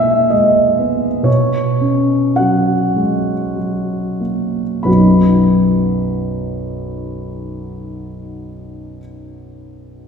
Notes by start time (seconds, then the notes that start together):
Already playing: B2 G#3 A#3 E4 E5 G#5
0.30 G#3 D#5
0.79 B3
1.23 B2 C#5
1.81 C#4
2.36 F#3 F#5
2.96 G#3
3.56 F#3
4.21 A#3
4.83 B1 F#2 F#3 B3 D#4 F#4 B5